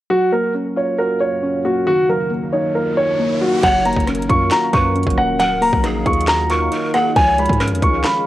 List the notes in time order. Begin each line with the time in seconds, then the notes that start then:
0.10 F#2 C#3 F#3 A#3 F#4 F5
0.32 A#3 A#4
0.55 C#4
0.76 F4 C#5
0.98 F#4 A#4
1.20 F4 C#5
1.43 C#4
1.65 A#3 F#4
1.87 D#2 D#3 F#3 F#4, riser
2.09 F#3 A#4
2.30 A#3
2.53 D#4 C#5
2.75 F4 A#4
2.97 D#4 C#5
3.19 A#3
3.41 F#3 F#4
3.63 F#1 F#3 C#4 A#4 C#5 F5 F#5, kick, closed hi-hat, crash
3.85 A#3 A#5, closed hi-hat
3.93 F#1, kick, closed hi-hat
4.00 closed hi-hat
4.07 C#4 A#4, cross-stick, closed hi-hat
4.15 closed hi-hat
4.22 closed hi-hat
4.29 F#2 F4 C#6, kick, closed hi-hat
4.51 F#4 A#5, snare, clap, closed hi-hat
4.73 F#2 F4 B4 C#6, kick, closed hi-hat
4.96 C#4, closed hi-hat
5.03 F#1, kick, closed hi-hat
5.10 closed hi-hat
5.18 D#1 A#3 F#5, cross-stick
5.40 D#3 F#3 D#4 A#4 F#5, closed hi-hat
5.61 A#3 A#5, open hi-hat
5.73 A#1, kick
5.84 D#4 G#4, cross-stick, closed hi-hat
6.06 D#2 F4 C#6, kick, closed hi-hat
6.13 closed hi-hat
6.21 closed hi-hat
6.28 F#4 A#5, snare, clap, closed hi-hat
6.50 F4 A#4 C#6, closed hi-hat
6.72 D#4 A#4, closed hi-hat
6.94 A#3 G#4 F#5, cross-stick, closed hi-hat
7.16 C#2 C#3 F3 C#4 G#4 C#5 G#5, kick, closed hi-hat
7.38 G#3 B5, closed hi-hat
7.46 G#2, kick, closed hi-hat
7.53 closed hi-hat
7.60 C#4 A#4, cross-stick, closed hi-hat
7.68 F2, closed hi-hat
7.75 closed hi-hat
7.82 C#2 F4 C#6, kick, closed hi-hat
8.04 F5 B5, snare, clap, closed hi-hat